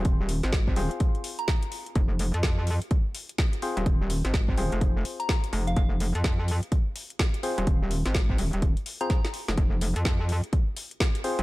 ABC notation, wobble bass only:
X:1
M:4/4
L:1/16
Q:"Swing 16ths" 1/4=126
K:Fm
V:1 name="Wobble bass" clef=bass
E,,,3 A,,,3 E,,, z8 z | F,,,3 F,,4 z8 E,,,- | E,,,3 A,,,3 E,,, F,,,3 z4 F,,,2 | F,,,3 F,,4 z8 E,,,- |
E,,,3 A,,,3 E,,, E,,,2 z6 F,,, | F,,,3 F,,4 z8 E,,, |]